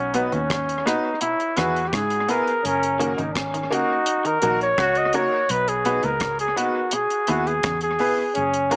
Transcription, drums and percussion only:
0.14 closed hi-hat medium
0.32 closed hi-hat soft
0.50 kick loud
0.50 cross-stick medium
0.50 closed hi-hat medium
0.69 closed hi-hat soft
0.87 cross-stick medium
0.87 closed hi-hat medium
1.21 closed hi-hat medium
1.40 closed hi-hat soft
1.57 cross-stick medium
1.57 closed hi-hat medium
1.76 closed hi-hat soft
1.93 kick loud
1.93 cross-stick loud
1.93 closed hi-hat medium
2.10 closed hi-hat medium
2.29 closed hi-hat medium
2.47 closed hi-hat soft
2.65 closed hi-hat medium
2.83 closed hi-hat medium
3.00 closed hi-hat medium
3.18 closed hi-hat soft
3.35 kick loud
3.35 cross-stick loud
3.35 closed hi-hat medium
3.54 closed hi-hat medium
3.72 closed hi-hat medium
4.06 closed hi-hat loud
4.25 closed hi-hat soft
4.42 closed hi-hat medium
4.61 closed hi-hat soft
4.78 kick loud
4.78 cross-stick loud
4.78 closed hi-hat medium
4.95 closed hi-hat medium
5.13 closed hi-hat medium
5.49 closed hi-hat medium
5.68 closed hi-hat medium
5.85 closed hi-hat medium
6.03 closed hi-hat soft
6.20 kick loud
6.20 cross-stick loud
6.20 closed hi-hat medium
6.39 closed hi-hat soft
6.57 closed hi-hat medium
6.91 closed hi-hat loud
7.10 closed hi-hat soft
7.27 closed hi-hat medium
7.47 closed hi-hat soft
7.63 kick loud
7.63 cross-stick loud
7.63 closed hi-hat medium
7.81 closed hi-hat medium
7.99 open hi-hat soft
8.35 closed hi-hat medium
8.53 closed hi-hat medium
8.71 closed hi-hat medium

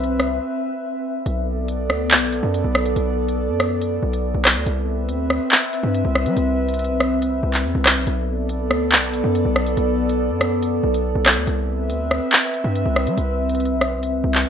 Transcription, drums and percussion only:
0.04 closed hi-hat medium
0.20 cross-stick medium
0.20 closed hi-hat medium
1.26 closed hi-hat medium
1.68 closed hi-hat medium
1.90 cross-stick medium
2.11 clap loud
2.11 closed hi-hat medium
2.33 closed hi-hat medium
2.54 closed hi-hat medium
2.75 cross-stick loud
2.86 closed hi-hat medium
2.96 closed hi-hat medium
3.29 closed hi-hat medium
3.60 cross-stick medium
3.60 closed hi-hat medium
3.82 closed hi-hat medium
4.13 closed hi-hat medium
4.45 cross-stick medium
4.45 clap loud
4.45 closed hi-hat medium
4.66 closed hi-hat medium
5.09 closed hi-hat medium
5.30 cross-stick medium
5.52 clap loud
5.52 closed hi-hat medium
5.73 closed hi-hat medium
5.95 closed hi-hat medium
6.15 cross-stick medium
6.26 closed hi-hat medium
6.37 closed hi-hat medium
6.69 closed hi-hat medium
6.74 closed hi-hat medium
6.79 closed hi-hat medium
6.84 closed hi-hat medium
7.00 cross-stick medium
7.00 closed hi-hat medium
7.22 closed hi-hat medium
7.54 clap medium
7.54 closed hi-hat medium
7.86 cross-stick medium
7.86 clap loud
7.86 open hi-hat medium
8.07 closed hi-hat medium
8.49 closed hi-hat medium
8.71 cross-stick medium
8.92 clap loud
8.92 closed hi-hat medium
9.14 closed hi-hat medium
9.35 closed hi-hat medium
9.56 cross-stick medium
9.67 closed hi-hat medium
9.77 closed hi-hat medium
10.09 closed hi-hat medium
10.41 cross-stick medium
10.41 closed hi-hat medium
10.63 closed hi-hat medium
10.94 closed hi-hat medium
11.26 cross-stick medium
11.26 clap loud
11.26 closed hi-hat medium
11.47 closed hi-hat medium
11.90 closed hi-hat medium
12.11 cross-stick medium
12.32 clap loud
12.32 closed hi-hat medium
12.54 closed hi-hat medium
12.75 closed hi-hat medium
12.96 cross-stick medium
13.07 closed hi-hat medium
13.18 closed hi-hat medium
13.49 closed hi-hat medium
13.55 closed hi-hat medium
13.60 closed hi-hat medium
13.65 closed hi-hat medium
13.81 cross-stick medium
13.81 closed hi-hat medium
14.03 closed hi-hat medium
14.35 clap medium
14.35 closed hi-hat medium

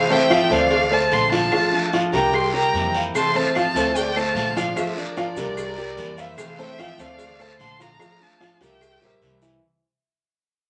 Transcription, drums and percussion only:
0.30 cowbell medium
0.30 short guiro medium
0.30 claves medium
0.51 cowbell medium
0.51 short guiro medium
0.71 cowbell loud
0.71 long guiro medium
0.92 claves medium
1.12 cowbell medium
1.12 short guiro medium
1.32 cowbell medium
1.32 short guiro medium
1.52 cowbell loud
1.52 long guiro medium
1.52 claves medium
1.93 cowbell medium
1.93 short guiro medium
2.13 cowbell medium
2.13 short guiro medium
2.33 cowbell loud
2.33 long guiro medium
2.33 claves medium
2.74 cowbell medium
2.74 short guiro medium
2.95 short guiro medium
3.15 cowbell loud
3.15 long guiro medium
3.15 claves medium
3.15 maracas medium
3.36 maracas soft
3.55 cowbell medium
3.55 short guiro medium
3.55 claves medium
3.55 maracas soft
3.76 cowbell medium
3.76 short guiro medium
3.76 maracas medium
3.96 cowbell loud
3.96 long guiro medium
3.96 maracas medium
4.16 claves medium
4.16 maracas soft
4.36 cowbell medium
4.36 short guiro medium
4.36 maracas soft
4.57 cowbell medium
4.57 short guiro medium
4.57 maracas medium
4.76 cowbell loud
4.76 long guiro medium
4.76 claves medium
4.76 maracas medium
4.97 maracas soft
5.17 cowbell medium
5.17 short guiro medium
5.17 maracas soft
5.37 cowbell medium
5.37 short guiro medium
5.37 maracas medium
5.57 cowbell loud
5.57 long guiro medium
5.57 claves medium
5.57 maracas medium
5.77 maracas soft
5.97 cowbell medium
5.97 short guiro medium
5.97 maracas soft
6.18 short guiro medium
6.18 maracas medium
6.38 cowbell loud
6.38 long guiro medium
6.38 claves medium
6.38 maracas medium
6.59 maracas soft
6.78 cowbell medium
6.78 short guiro medium
6.78 claves medium
6.78 maracas soft
6.98 cowbell medium
6.98 short guiro medium
6.98 maracas medium
7.18 cowbell loud
7.18 long guiro medium
7.18 maracas medium
7.39 claves medium
7.39 maracas soft
7.59 cowbell medium
7.59 short guiro medium
7.59 maracas soft
7.80 cowbell medium
7.80 short guiro medium
7.80 maracas medium
7.99 cowbell loud
7.99 long guiro medium
7.99 claves medium
7.99 maracas medium
8.21 maracas soft
8.41 cowbell medium
8.41 short guiro medium
8.41 maracas soft
8.61 cowbell medium
8.61 short guiro medium
8.61 maracas medium
8.81 cowbell loud
8.81 long guiro medium
8.81 claves medium
8.81 maracas loud
9.02 maracas soft
9.22 cowbell medium
9.22 short guiro medium
9.22 maracas soft
9.42 short guiro medium
9.42 maracas medium

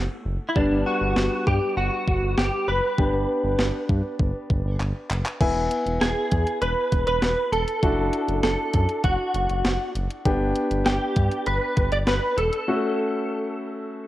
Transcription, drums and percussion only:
0.56 kick loud
1.16 snare loud
1.47 kick medium
2.08 kick medium
2.38 snare loud
2.98 kick loud
3.59 snare loud
3.89 kick medium
4.19 kick medium
4.50 kick medium
4.80 clap medium
5.10 clap medium
5.25 clap medium
5.41 kick loud
5.41 closed hi-hat medium
5.41 crash medium
5.71 closed hi-hat medium
5.86 closed hi-hat soft
6.01 snare loud
6.01 closed hi-hat medium
6.31 kick medium
6.31 closed hi-hat medium
6.47 closed hi-hat medium
6.62 closed hi-hat medium
6.92 kick medium
6.92 closed hi-hat medium
7.07 closed hi-hat soft
7.22 snare loud
7.22 closed hi-hat medium
7.53 closed hi-hat medium
7.68 closed hi-hat medium
7.83 kick loud
7.83 closed hi-hat medium
8.13 closed hi-hat medium
8.29 closed hi-hat soft
8.43 snare loud
8.43 closed hi-hat medium
8.74 kick medium
8.74 closed hi-hat medium
8.89 closed hi-hat soft
9.04 kick medium
9.04 closed hi-hat medium
9.34 closed hi-hat medium
9.49 closed hi-hat soft
9.65 snare loud
9.65 closed hi-hat medium
9.95 closed hi-hat medium
10.10 closed hi-hat medium
10.25 kick loud
10.25 closed hi-hat medium
10.56 closed hi-hat medium
10.71 closed hi-hat soft
10.86 snare loud
10.86 closed hi-hat medium
11.16 kick medium
11.16 closed hi-hat medium
11.31 closed hi-hat medium
11.46 closed hi-hat medium
11.77 kick medium
11.77 closed hi-hat medium
11.92 closed hi-hat soft
12.07 snare loud
12.07 closed hi-hat medium
12.38 closed hi-hat medium
12.53 closed hi-hat medium

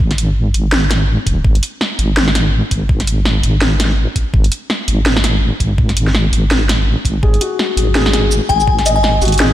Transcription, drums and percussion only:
0.11 snare soft
0.11 closed hi-hat soft
0.18 closed hi-hat medium
0.54 closed hi-hat medium
0.72 snare loud
0.91 snare soft
0.91 snare medium
0.91 closed hi-hat medium
1.26 kick medium
1.26 closed hi-hat medium
1.45 kick loud
1.55 closed hi-hat soft
1.63 closed hi-hat medium
1.81 snare medium
1.99 closed hi-hat medium
2.17 snare loud
2.28 snare medium
2.35 snare medium
2.35 closed hi-hat medium
2.71 kick medium
2.71 closed hi-hat medium
2.89 kick loud
3.00 snare soft
3.00 closed hi-hat soft
3.07 closed hi-hat medium
3.25 snare medium
3.43 closed hi-hat medium
3.62 snare loud
3.80 snare medium
3.80 closed hi-hat medium
3.85 snare soft
4.16 kick medium
4.16 closed hi-hat medium
4.34 kick loud
4.44 closed hi-hat soft
4.52 closed hi-hat medium
4.70 snare medium
4.88 closed hi-hat medium
5.06 snare loud
5.17 snare medium
5.24 snare medium
5.24 closed hi-hat medium
5.60 kick medium
5.60 closed hi-hat medium
5.78 kick loud
5.89 snare soft
5.89 closed hi-hat soft
5.97 closed hi-hat medium
6.07 snare soft
6.15 snare medium
6.33 closed hi-hat medium
6.51 snare loud
6.69 snare soft
6.69 snare medium
6.69 closed hi-hat medium
7.05 kick medium
7.05 closed hi-hat medium
7.23 kick loud
7.34 closed hi-hat soft
7.41 closed hi-hat medium
7.59 snare medium
7.77 closed hi-hat medium
7.95 snare loud
8.06 snare medium
8.13 snare medium
8.13 closed hi-hat medium
8.32 shaker medium
8.50 kick medium
8.50 closed hi-hat medium
8.60 shaker soft
8.68 kick loud
8.79 snare soft
8.79 closed hi-hat soft
8.86 closed hi-hat medium
8.86 shaker medium
9.04 snare medium
9.22 closed hi-hat soft
9.22 shaker soft
9.25 closed hi-hat soft
9.28 closed hi-hat soft
9.32 closed hi-hat soft
9.34 closed hi-hat medium
9.38 snare loud
9.38 closed hi-hat medium

